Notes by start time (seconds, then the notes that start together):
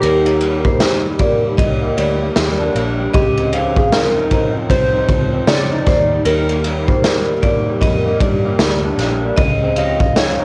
Already playing: G3 D#4
0.00 D#2 D#3 G4 A#4, ride
0.25 A#3, ride
0.41 G3, ride
0.64 A#3 C5, kick
0.80 G3, snare, ride
1.19 A#3 D5, kick, ride
1.43 G3
1.57 C2 D#5, kick, ride
1.82 A#3
1.97 D2 G3 D5, ride
2.21 A#3
2.36 D#2 G3, snare, ride
2.59 D4
2.75 A#1 A#3, ride
3.00 G3
3.14 C#2 C#3 G4 D#5, kick, ride
3.38 C4, ride
3.53 F3 F5, ride
3.77 C4 G#4, kick
3.92 F3 A#4, snare, ride
4.16 D#4
4.31 C4 D#5, kick, ride
4.55 F3
4.70 C2 C5, kick, ride
4.94 C4
5.09 C#2 F3, kick, ride
5.32 C4
5.47 C#3 F3 C#5 D5, snare, ride
5.72 D#4
5.86 D#2 D#3 C5, kick, snare, ride
6.11 G3
6.25 D#2 D#3 A#4, ride
6.49 A#3, ride
6.64 G3, ride
6.87 A#3 C5, kick
7.04 G3, snare, ride
7.42 A#3 D5, kick, ride
7.67 G3
7.81 F2 D#5, kick, ride
8.06 A#3
8.20 G2 G3 D5, kick, ride
8.45 A#3
8.59 D2 G3, snare, ride
8.85 D4
8.98 A#1 A#3, snare, ride
9.23 G3
9.37 C#2 C#3 D#5, kick, ride
9.63 C4
9.76 F3 D#5 F5, ride
10.00 kick
10.16 F3 C#5, snare, ride
10.39 D#4